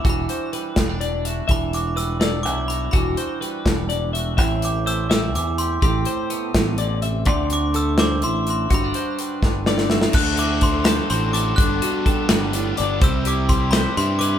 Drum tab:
CC |------------|------------|------------|------------|
HH |x-x-x-x-x-x-|x-x-x-x-x-x-|x-x-x-x-x-x-|x-x-x-x-x-x-|
SD |------o-----|------o-----|------o-----|------o-----|
BD |o-----o-----|o-----------|o-----o-----|o-----------|

CC |------------|------------|------------|x-----------|
HH |x-x-x-x-x-x-|x-x-x-x-x-x-|x-x-x-------|--x-x-x-x-x-|
SD |------o-----|------o-----|------o-oooo|------o-----|
BD |o-----o-----|o-----------|o-----o-----|o---o-------|

CC |------------|------------|
HH |x-x-x-x-x-x-|x-x-x-x-x-x-|
SD |------o-----|------o-----|
BD |o---o-------|o---o-------|